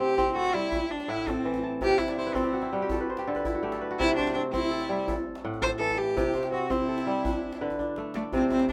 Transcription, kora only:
Already playing: C3 A3 D4 C5
0.00 C4
0.18 C4
0.35 A4
0.54 G3
1.08 A2 F#5
1.27 A4
1.45 E3
1.63 A5
1.82 C3
1.90 F#5
1.99 E5
2.09 D5
2.18 C5
2.27 B4
2.35 C4 A4
2.44 G4
2.53 F#4
2.62 E4
2.73 G3 F#4
2.82 G4
2.91 A4
3.01 B4
3.10 C5
3.18 G4
3.27 D3 A4
3.36 B4
3.45 E4
3.55 F#4
3.63 A3 G4
3.72 A4
3.81 B4
3.91 F#4
4.00 C3
4.18 C5
4.35 C4
4.53 C4
4.71 A4
4.89 G3
5.08 A4
5.44 A2 F#5
5.62 A4
5.80 E3
5.98 A5
6.17 C3
6.34 C5
6.52 C4
6.70 C4
6.88 A4
7.07 G3
7.25 D4
7.61 D3 B4
7.79 D4
7.98 A3
8.15 D5
8.33 C3
8.51 E4

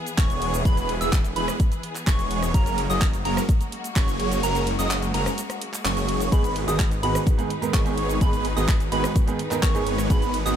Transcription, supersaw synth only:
0.18 E3 G#3 B3 G#4 C#5
0.65 E3 G#3 B3 G#4 B4
1.01 E3 G#3 B3 G#4 E5
1.36 E3 G#3 B3 G#4 B4
2.07 E3 G#3 B3 G#4 C#5
2.54 F#3 A#3 C#4 G#4 A#4
2.90 F#3 A#3 C#4 G#4 D#5
3.25 F#3 A#3 C#4 G#4 A#4
3.96 F#3 A#3 C#4 G#4 C#5
4.43 F#3 A#3 C#4 G#4 A#4
4.79 F#3 A#3 C#4 G#4 D#5
5.14 F#3 A#3 C#4 G#4 A#4
5.85 F#3 A#3 C#4 G#4 C#5
6.32 D#3 G#3 B3 G#4 B4
6.68 D#3 G#3 B3 G#4 D#5
7.03 D#3 G#3 B3 G#4 B4
7.74 D#3 G#3 B3 G#4 C#5
8.21 D#3 G#3 B3 G#4 B4
8.57 D#3 G#3 B3 G#4 D#5
8.92 D#3 G#3 B3 G#4 B4
9.63 D#3 G#3 B3 G#4 C#5
10.10 D#3 G#3 B3 G#4 B4
10.46 D#3 G#3 B3 G#4 D#5

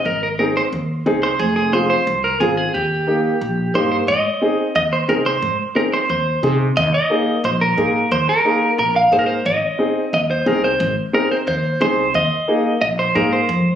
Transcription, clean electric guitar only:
0.06 A#4
0.23 A#4
0.39 A#4
0.57 C5
1.23 C5
1.40 G#4
1.56 G#4
1.73 C5
1.90 C5
2.24 A#4
2.40 G#4
2.57 G#4
2.74 G4
3.75 C5
3.92 C5
4.08 D#5
4.76 D#5
4.93 C5
5.09 A#4
5.26 C5
5.76 A#4
5.93 C5
6.10 C5
6.77 D#5
6.94 D#5
7.45 C5
7.61 A#4
8.12 C5
8.29 A#4
8.79 A#4
8.96 F5
9.13 C5
9.19 A#4
9.26 C5
9.46 D#5
10.14 D#5
10.31 C5
10.47 A#4
10.64 C5
11.14 A#4
11.31 C5
11.48 C5
11.82 C5
12.15 D#5
12.81 D#5
12.99 C5
13.15 A#4
13.33 C5

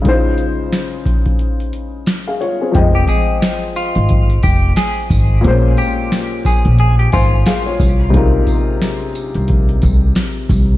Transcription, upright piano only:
0.02 C#3 G#3 D#4
0.07 E4 C5
0.13 F4
2.28 G#4 F5
2.41 F4 C#5
2.61 C4 G#4
2.72 F3 C4 G5
2.77 G#3 D#5
5.41 A#2 A#3 C4
5.46 G#3 C5
5.51 C#4
7.13 C5 G#5
7.47 G#4 F5
7.66 F4 C#5
8.10 C3 G#3 D#4
8.15 F4 A#4

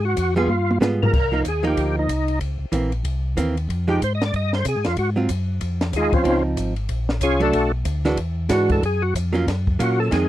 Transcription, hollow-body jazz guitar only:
0.36 G3 B3 F4 G#4
0.81 G3 B3 F4 G#4
1.32 F3 A#3 D#4
1.63 F3 A#3 D#4
2.72 E3 A#3 C4
3.37 E3 A#3 C4
3.88 F3 G#3 D#4 G4
5.16 F#3 C4 F4
6.24 F3 C4 D#4
7.40 F#3 A3 D4
8.05 E3 G#3 D4 F#4
8.49 E3 G#3 D4 F#4
9.33 F#3 A#3 C#4 F4
9.79 F#3 A#3 C#4 F4
10.11 D#3 G#3 C4

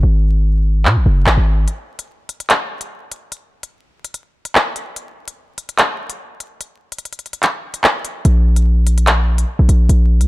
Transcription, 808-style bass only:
0.03 G#1
0.85 B2
0.96 G#1
1.06 F#1
1.26 G#1
1.37 G#1
8.25 A#1
9.59 A#1
9.69 A#1
9.89 A#1
10.21 C#2

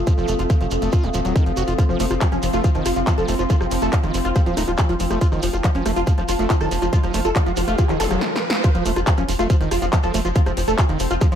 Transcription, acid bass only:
0.07 F3
0.18 F3
0.28 A3
0.39 F4
0.50 F3
0.61 F3
0.82 A3
0.93 F4
1.03 F#3
1.14 F3
1.25 F#3
1.36 D#3
1.46 F3
1.57 F#4
1.68 F4
1.78 F3
1.89 F3
2.00 A3
2.11 F4
2.21 F3
2.32 F3
2.53 A3
2.64 F4
2.75 D#3
2.96 F4
3.07 F3
3.18 F3
3.28 A3
3.39 F4
3.50 F3
3.61 F3
3.82 A3
3.93 F4
4.03 D#3
4.25 F4
4.36 F3
4.46 F3
4.57 A3
4.68 F4
4.78 F3
4.89 F3
5.11 A3
5.21 F4
5.32 D#3
5.53 F4
5.64 F3
5.75 F3
5.86 A3
5.96 F4
6.07 F3
6.18 F3
6.39 A3
6.50 F4
6.61 D#3
6.82 F4
6.93 F3
7.03 F3
7.14 A3
7.25 F4
7.36 F3
7.46 F3
7.68 A3
7.78 F4
7.89 D#3
8.11 F#3
8.64 F3
8.75 F3
8.86 A3
8.96 F4
9.07 F3
9.18 F3
9.39 A3
9.50 F4
9.61 D#3
9.82 F4
9.93 F3
10.03 F3
10.14 A3
10.25 F4
10.36 F3
10.46 F3
10.68 A3
10.79 F4
10.89 D#3
11.11 F4
11.21 F3
11.32 F3

